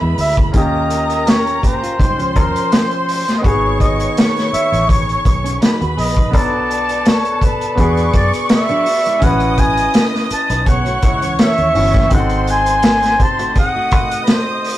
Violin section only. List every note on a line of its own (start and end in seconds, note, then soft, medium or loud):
0.00 0.50 B4 medium
0.00 0.50 B5 medium
0.54 1.96 A#4 medium
0.54 1.96 A#5 medium
2.00 3.41 C5 medium
2.00 3.42 C6 medium
3.45 5.57 C#5 medium
3.45 5.58 C#6 medium
5.62 6.32 B4 medium
5.62 6.32 B5 medium
6.34 7.75 A4 medium
6.34 7.75 A5 medium
7.78 9.19 D5 medium
7.78 9.20 C#6 medium
9.22 10.64 D#5 medium
9.22 10.64 D#6 medium
10.68 12.09 C#5 medium
10.68 12.09 C#6 medium
12.11 13.53 C5 medium
12.11 13.53 C6 medium
13.57 14.78 D#5 medium
13.57 14.78 D#6 medium